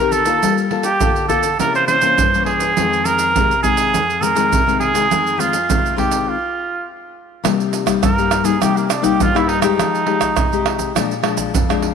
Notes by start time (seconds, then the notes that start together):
Already playing: D#3 A#4
0.00 C4 G4 A#4, pandeiro, shaker
0.12 A4, pandeiro, shaker
0.25 A#3 F4 A4, pandeiro, shaker
0.42 G3, pandeiro, shaker, surdo
0.58 pandeiro, shaker
0.71 A#3 F4 A4, pandeiro
0.83 G4, pandeiro, shaker
1.00 D3 A#3 F4 A4, pandeiro, shaker, surdo
1.16 pandeiro, shaker
1.28 A#3 F4 A4, pandeiro, shaker, surdo
1.43 pandeiro, shaker
1.60 C3 E3 A#3 C#4 A#4, pandeiro, shaker, surdo
1.75 C5, pandeiro, shaker
1.88 E3 A#3 C#4 C5, pandeiro, shaker
2.01 E3 A#3 C#4, pandeiro, shaker
2.18 G2, pandeiro, shaker, surdo
2.34 E3 A#3 C#4, pandeiro, shaker
2.46 G#4, pandeiro
2.60 pandeiro, shaker
2.77 F2 D#3 G#3 C4, pandeiro, shaker, surdo
2.93 pandeiro, shaker
3.05 A#4, pandeiro, shaker
3.19 pandeiro, shaker
3.36 C3 D#3 G#3 C4, pandeiro, shaker, surdo
3.51 pandeiro, shaker
3.63 D#3 G#3 C4 G#4, pandeiro, shaker, surdo
3.77 pandeiro, shaker
3.93 F2, pandeiro, shaker, surdo
4.10 pandeiro, shaker
4.21 D#3 G#3 C4 A#4, pandeiro, shaker
4.35 D#3 G#3 C4, pandeiro, shaker
4.52 C3, pandeiro, shaker, surdo
4.67 D#3 G#3 C4, pandeiro, shaker
4.80 G#4, pandeiro
4.94 D#3 G#3 C4, pandeiro, shaker
5.10 F2 D#3 G#3 C4, pandeiro, shaker, surdo
5.27 pandeiro, shaker
5.37 D#3 G#3 C4 F4, pandeiro, shaker
5.53 pandeiro, shaker
5.68 C3 D#3 G#3 C4, pandeiro, shaker, surdo
5.86 pandeiro, shaker
5.96 D#3 G#3 C4 G4, pandeiro, surdo
6.11 pandeiro, shaker
6.29 F4
7.44 C3 G3 A#3 D#4, pandeiro, tamborim, shaker, surdo
7.60 pandeiro, shaker
7.73 pandeiro, shaker
7.86 G3 A#3 D#4, pandeiro, tamborim, shaker, surdo
8.02 G2 A#4, pandeiro, tamborim, shaker, surdo
8.18 G3 A#3 D#4, pandeiro, shaker
8.31 pandeiro, tamborim, shaker
8.44 G3 A#3 D#4 G#4, pandeiro, shaker, surdo
8.60 C3 G3 A#3 D#4 G4, pandeiro, tamborim, shaker, surdo
8.77 A#3, pandeiro, shaker
8.90 D4, pandeiro, tamborim, shaker
9.02 G3 A#3 D#4 G4, pandeiro, shaker, surdo
9.19 G2 F4, pandeiro, shaker, surdo
9.34 G3 A#3 D#4 E4, pandeiro, tamborim, shaker
9.48 D#4, pandeiro
9.61 G#3 D#4 G4, pandeiro, tamborim, shaker, surdo
9.78 F3, pandeiro, tamborim, shaker, surdo
9.95 pandeiro, shaker
10.06 G#3 D#4 G4, pandeiro
10.21 pandeiro, tamborim, shaker, surdo
10.36 C3, pandeiro, tamborim, shaker, surdo
10.52 G#3 D#4 G4, pandeiro, shaker
10.66 pandeiro, tamborim
10.79 pandeiro, shaker, surdo
10.95 A#2 F3 G#3 D4, pandeiro, tamborim, shaker, surdo
11.11 pandeiro, shaker
11.23 F3 G#3 D4, pandeiro, tamborim
11.37 pandeiro, shaker, surdo
11.54 F2, pandeiro, shaker, surdo
11.69 F3 G#3 D4, pandeiro, tamborim, shaker
11.82 pandeiro